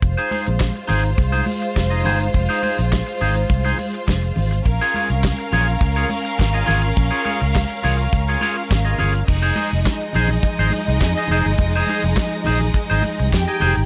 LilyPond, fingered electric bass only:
\new Staff \with { instrumentName = "Fingered electric bass" } { \clef bass \time 4/4 \key f \minor \tempo 4 = 104 f,,16 r8 bes,,8 r16 aes,,8 c,8 r8 f,,8 g,,8 | f,,16 r8 bes,,8 r16 aes,,8 c,8 r8 f,,8 aes,,8 | bes,,16 r8 c,8 r16 bes,,8 des,8 r8 aes,,8 aes,,8 | bes,,16 r8 des,8 r16 c,8 des,8 r8 aes,,8 g,,8 |
f,,8 r16 f,,16 r8 bes,,8 r16 aes,,16 r16 c,16 f,16 r16 f,,16 g,,16 | f,,8 r16 f,,16 r8 bes,,8 r16 aes,,16 r16 c,16 f,16 r16 f,,16 aes,,16 | }